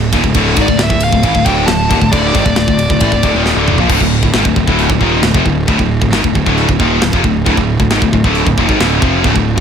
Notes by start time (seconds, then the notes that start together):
Already playing: D1
0.13 D#1 D#2 A#2, kick, ride
0.23 D1 D2 A2, kick
0.34 D1 D2 A2 D3, kick, ride
0.56 G#1 G#2 D#3, kick, ride
0.62 D5
0.68 D1 D2 A2, kick
0.78 D1 D2 A2, snare, ride
0.83 E5
0.90 D1 D2 A2, kick
1.00 F5, ride
1.11 D1 D2 A2, kick
1.23 A1 A2 E3, kick, ride
1.35 D1 D2 A2, kick
1.45 D1 D2 A2 D3 G5, kick, ride
1.66 D1 D2 A2 A5, snare, ride
1.89 D#1 D#2 A#2, kick, ride
2.01 D1 D2 A2, kick
2.12 D1 D2 A2 D3 D5, kick, ride
2.34 G#1 G#2 D#3, kick, ride
2.45 D1 D2 A2, kick
2.56 D1 D2 A2, snare, ride
2.68 D1 D2 A2, kick
2.79 ride
2.89 D1 D2 A2, kick
3.00 A1 A2 E3, kick, ride
3.12 D1 D2 A2, kick
3.23 D1 D2 A2, kick, ride
3.33 D#1 D#2 A#2 D#3
3.46 snare
3.55 D1 D2 A2 D3
3.68 mid tom
3.77 A#1 A#2 F3, floor tom
3.89 D1 D2 A2, kick, crash, china
4.00 D1 D2 A2, kick
4.23 D1 D2 A2, kick
4.34 G#1 G#2 D#3, snare, china
4.45 D1 D2 A2, kick
4.56 D1 D2 A2, kick
4.67 D1 D2 A2 D3, kick
4.79 china
4.90 D1 D2 A2, kick
5.00 D#1 D#2 A#2 D#3, kick
5.22 D1 D2 A2, snare, china
5.34 F1 F2 C3, kick
5.45 D1 D2 A2, kick
5.67 D1 D2 A2, kick, china
5.79 D1 D2 A2, kick
6.01 D1 D2 A2, kick
6.11 G#1 G#2 D#3, snare, china
6.23 D1 D2 A2, kick
6.35 D1 D2 A2, kick
6.46 D1 D2 A2 D3, kick
6.58 china
6.68 D1 D2 A2, kick
6.79 D#1 D#2 A#2 D#3, kick
7.02 D1 D2 A2, snare, china
7.13 F1 F2 C3, kick
7.24 D1 D2 A2, kick
7.46 D1 D2 A2, kick, china
7.57 D1 D2 A2, kick
7.80 D1 D2 A2, kick
7.90 G#1 G#2 D#3, snare, china
8.01 D1 D2 A2, kick
8.13 D1 D2 A2, kick
8.24 D1 D2 A2 D3, kick
8.35 china
8.46 D1 D2 A2, kick
8.57 D#1 D#2 A#2, kick
8.68 G#1 G#2 D#3, kick
8.80 D1 D2 A2 D3, snare, china
9.01 F1 F2 C3 F3, kick
9.24 D1 D2 A2, kick, china
9.34 D1 D2 A2, kick
9.56 D1 D2 A2